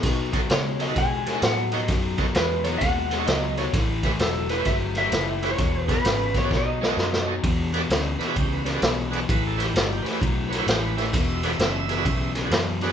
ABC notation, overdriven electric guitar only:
X:1
M:4/4
L:1/8
Q:"Swing" 1/4=130
K:E
V:1 name="Overdriven electric guitar" clef=bass
[B,,F,] [B,,F,] [B,,G,] [B,,F,] [B,,G,] [B,,G,] [B,,F,] [B,,F,] | [B,,F,] [B,,F,] [B,,G,] [B,,F,] [B,,G,] [B,,G,] [B,,F,] [B,,F,] | [A,,E,] [A,,E,] [A,,F,] [A,,E,] [A,,F,] [A,,F,] [A,,E,] [A,,E,] | [E,,B,,] [E,,B,,] [E,,C,] [E,,B,,] [B,,F,] [B,,G,] [B,,F,] [B,,F,] |
[E,,B,,] [E,,B,,] [E,,C,] [E,,B,,] [E,,C,] [E,,C,] [E,,B,,] [E,,B,,] | [A,,E,] [A,,E,] [A,,F,] [A,,E,] [A,,F,] [A,,F,] [A,,E,] [A,,E,] | [E,,B,,] [E,,B,,] [E,,C,] [E,,B,,] [E,,C,] [E,,C,] [E,,B,,] [E,,B,,] |]